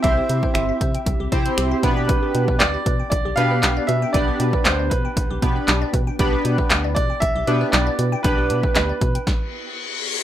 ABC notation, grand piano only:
X:1
M:4/4
L:1/8
Q:1/4=117
K:Gmix
V:1 name="Grand piano"
e2 e4- e z | B2 d2 d f2 e | d2 c B4 z | z3 d e2 d2 |
B2 B4- B z |]